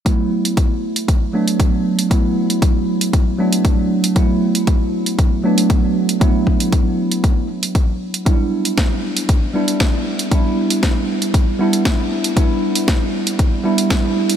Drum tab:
HH |x--xx--xx--xx--x|x--xx--xx--xx--x|x--xx--xx--xx--x|x--xx--xx--xx--x|
SD |----------------|----------------|----------------|----------------|
BD |o---o---o---o---|o---o---o---o---|o---o---o---o---|o-o-o---o---o---|

HH |x--xx--xx--xx--x|x--xx--xx--xx--x|x--xx--xx--xx--x|
SD |----o-------o---|----o-------o---|----o-------o---|
BD |o---o---o---o---|o---o---o---o---|o---o---o---o---|